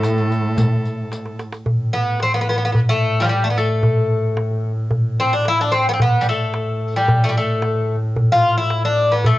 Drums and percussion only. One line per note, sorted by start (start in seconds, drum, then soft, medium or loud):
0.04 riq soft
0.04 darbuka tek medium
0.18 riq soft
0.31 riq soft
0.31 darbuka ka soft
0.45 darbuka ka soft
0.57 riq medium
0.57 darbuka dum medium
0.85 riq soft
0.85 darbuka ka soft
1.12 riq soft
1.12 darbuka tek medium
1.26 darbuka ka medium
1.39 riq soft
1.39 darbuka tek medium
1.52 riq soft
1.52 darbuka ka medium
1.66 darbuka dum medium
2.20 darbuka tek medium
2.35 darbuka ka soft
2.48 darbuka ka soft
2.62 darbuka ka soft
2.75 darbuka dum medium
3.01 darbuka ka soft
3.29 darbuka tek medium
3.55 darbuka ka soft
3.70 darbuka ka soft
3.83 darbuka dum medium
4.37 darbuka tek medium
4.51 darbuka ka soft
4.64 darbuka ka soft
4.77 darbuka ka soft
4.91 darbuka dum medium
5.18 darbuka ka soft
5.45 darbuka tek medium
5.86 darbuka ka soft
6.00 darbuka dum medium
6.54 darbuka tek medium
6.68 darbuka ka soft
6.81 darbuka ka soft
7.08 darbuka dum medium
7.35 darbuka ka soft
7.62 darbuka tek medium
7.89 darbuka ka soft
8.03 darbuka ka soft
8.16 darbuka dum medium
8.43 darbuka ka soft
8.70 darbuka tek medium
8.98 darbuka ka soft
9.11 darbuka ka soft
9.25 darbuka dum medium